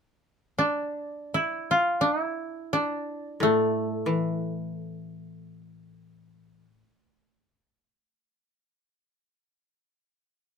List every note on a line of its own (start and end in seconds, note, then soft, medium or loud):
0.58 2.01 D4 soft
1.34 1.77 E4 soft
1.71 2.07 F4 soft
2.01 2.21 D4 soft
2.21 4.27 E4 soft
2.73 5.16 D4 medium
3.40 6.78 A2 soft
3.40 7.39 A3 soft
4.06 6.62 E3 soft